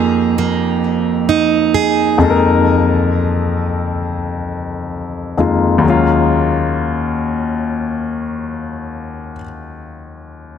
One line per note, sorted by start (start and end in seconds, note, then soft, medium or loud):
0.00 2.15 F2 medium
0.00 2.20 F3 medium
0.00 2.16 G#3 medium
0.00 0.38 A#3 medium
0.00 2.16 A#3 medium
0.00 1.28 D#4 medium
0.00 2.17 D#4 medium
0.00 2.18 G4 medium
0.00 1.74 G#4 medium
0.38 2.81 A#3 medium
1.29 2.81 D#4 medium
1.74 2.81 G#4 medium
2.18 5.33 F2 medium
2.18 5.34 G#3 medium
2.18 5.35 A#3 medium
2.22 5.35 D#4 medium
2.22 2.29 A4 medium
2.30 5.39 A#4 medium
5.37 5.83 F2 medium
5.37 5.81 G#3 soft
5.37 5.83 A#3 soft
5.37 5.84 D#4 soft
5.37 5.85 F4 medium
5.78 9.32 D#2 medium
5.78 9.35 F#3 medium
5.83 9.37 G#3 medium
5.83 9.39 A#3 medium
5.87 9.41 C#4 medium
5.87 9.44 F4 medium